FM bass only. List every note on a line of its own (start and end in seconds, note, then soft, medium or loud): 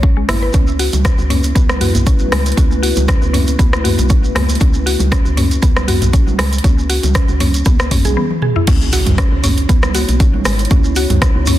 0.00 0.26 B1 medium
0.28 0.50 G#1 loud
0.54 0.89 C#2 loud
0.93 1.14 C#2 medium
1.18 1.52 C#2 loud
1.56 1.91 C#2 medium
1.95 2.29 B1 medium
2.32 2.53 C#2 medium
2.57 2.93 C#2 loud
2.97 3.17 C#2 medium
3.22 3.56 C#2 loud
3.59 3.95 C#2 medium
3.98 4.32 B1 medium
4.35 4.57 C#2 medium
4.61 4.96 C#2 loud
5.00 5.21 C#2 medium
5.25 5.59 C#2 loud
5.63 5.98 C#2 medium
6.02 6.36 B1 medium
6.39 6.60 C#2 medium
6.64 7.00 C#2 loud
7.03 7.24 C#2 medium
7.29 7.63 C#2 loud
7.66 8.01 C#2 medium
8.05 8.17 B1 medium
8.68 9.03 C#2 loud
9.07 9.27 C#2 medium
9.32 9.66 C#2 loud
9.69 10.05 C#2 medium
10.08 10.42 B1 medium
10.45 10.67 G#1 loud
10.71 11.06 C#2 loud
11.10 11.31 C#2 loud
11.35 11.59 C#2 loud